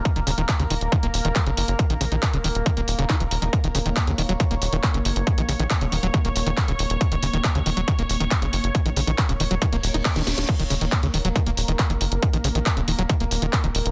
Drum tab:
CC |----------------|----------------|----------------|----------------|
HH |xxoxxxoxxxoxxxox|xxoxxxoxxxoxxxox|xxoxxxoxxxoxxxox|xxoxxxoxxxoxxxox|
CP |----x-------x---|----x-------x---|----x-------x---|----x-------x---|
SD |----------------|----------------|----------------|----------------|
BD |o---o---o---o---|o---o---o---o---|o---o---o---o---|o---o---o---o---|

CC |----------------|----------------|x---------------|----------------|
HH |xxoxxxoxxxoxxxox|xxoxxxoxxxoxxxox|xxoxxxoxxxoxxxox|xxoxxxoxxxoxxxox|
CP |----x-------x---|----x-------x---|----x-------x---|----x-------x---|
SD |----------------|-------------ooo|----------------|----------------|
BD |o---o---o---o---|o---o---o---o---|o---o---o---o---|o---o---o---o---|